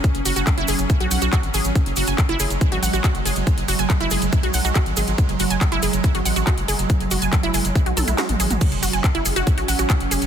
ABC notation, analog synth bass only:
X:1
M:4/4
L:1/16
Q:1/4=140
K:F#m
V:1 name="Analog synth bass" clef=bass
z F,,, F,,, F,,, z F,,, F,,, F,,, z B,,, B,,, B,,, z G,,, G,,, G,,, | z F,,, F,,, F,,, z F,,, F,,, F,,, z G,,, A,,, A,,, z F,,, F,,, F,,, | z F,,, F,,, F,,, z F,,, F,,, F,,, z B,,, B,,, B,,, z G,,, G,,, G,,, | z F,,, F,,, F,,, z F,,, F,,, F,,, z G,,, A,,, A,,, z F,,, F,,, F,,, |
z F,,, F,,, F,,, z F,,, F,,, F,,, z B,,, B,,, B,,, z A,,, A,,, A,,, | z F,,, F,,, F,,, z F,,, F,,, F,,, z G,,, A,,, A,,, z F,,, F,,, F,,, |]